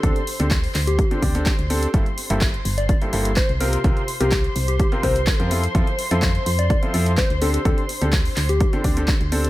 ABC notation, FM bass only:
X:1
M:4/4
L:1/16
Q:1/4=126
K:Dm
V:1 name="FM bass" clef=bass
D,, z2 D,,2 z D,,2 z2 D,,2 z D,,2 z | G,,, z2 G,,,2 z G,,,2 z2 G,,,2 z C,,2 z | C,, z2 C,,2 z C,,2 z2 C,,2 z F,,2 z | F,, z2 F,,2 z F,,2 z2 F,,2 z D,,2 z |
D,, z2 D,,2 z D,,2 z2 D,,2 z D,,2 z |]